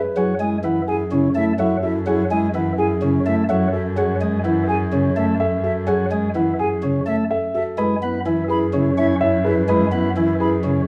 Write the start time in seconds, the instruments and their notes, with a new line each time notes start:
Already playing: marimba G#4, grand piano B4
0.16 cello F#2, pipe organ F#3, alto flute E4, marimba G#4, grand piano G#5
0.40 pipe organ G#3, alto flute E4, flute G#5
0.64 pipe organ E3, marimba E4, alto flute E4, grand piano F#5
0.88 alto flute E4, marimba G#4, grand piano G#4, flute G#5
1.11 pipe organ C#3, marimba C#4, alto flute E4, grand piano C#5
1.35 pipe organ A3, alto flute E4, flute E5
1.59 pipe organ F#3, alto flute E4, marimba A4, grand piano E5
1.83 alto flute E4, marimba F#4, grand piano A4, flute E5
2.06 pipe organ F#3, alto flute E4, marimba G#4, grand piano G#5
2.30 pipe organ G#3, alto flute E4, flute G#5
2.54 pipe organ E3, alto flute E4, marimba E4, grand piano F#5
2.78 alto flute E4, marimba G#4, grand piano G#4, flute G#5
3.02 pipe organ C#3, marimba C#4, alto flute E4, grand piano C#5
3.26 pipe organ A3, alto flute E4, flute E5
3.49 pipe organ F#3, alto flute E4, marimba A4, grand piano E5
3.73 marimba F#4, grand piano A4, flute E5
3.96 pipe organ F#3, marimba G#4, grand piano G#5
4.21 pipe organ G#3
4.43 pipe organ E3, marimba E4, grand piano F#5
4.67 grand piano G#4, marimba G#4, flute G#5
4.92 pipe organ C#3, marimba C#4, grand piano C#5
5.16 pipe organ A3, flute E5
5.40 marimba A4, grand piano E5
5.64 marimba F#4, grand piano A4, flute E5
5.87 pipe organ F#3, marimba G#4, grand piano G#5
6.11 pipe organ G#3
6.35 pipe organ E3, marimba E4, grand piano F#5
6.59 grand piano G#4, marimba G#4, flute G#5
6.83 pipe organ C#3, marimba C#4, grand piano C#5
7.06 pipe organ A3, flute E5
7.31 marimba A4, grand piano E5
7.55 marimba F#4, grand piano A4, flute E5
7.78 cello F#2, pipe organ G#3, alto flute E4, marimba B4, grand piano B5
8.02 pipe organ B3, alto flute E4
8.26 pipe organ E3, marimba E4, alto flute E4, grand piano G#5
8.48 alto flute E4, grand piano G#4, marimba B4, flute B5
8.73 pipe organ C#3, marimba C#4, alto flute E4, grand piano C#5
8.97 pipe organ C#4, alto flute E4, flute E5
9.21 alto flute E4, marimba C#5, grand piano E5
9.45 alto flute E4, marimba G#4, grand piano B4, flute E5
9.69 pipe organ G#3, alto flute E4, marimba B4, grand piano B5
9.92 pipe organ B3, alto flute E4
10.16 pipe organ E3, marimba E4, alto flute E4, grand piano G#5
10.40 alto flute E4, grand piano G#4, marimba B4, flute B5
10.63 pipe organ C#3, marimba C#4, alto flute E4, grand piano C#5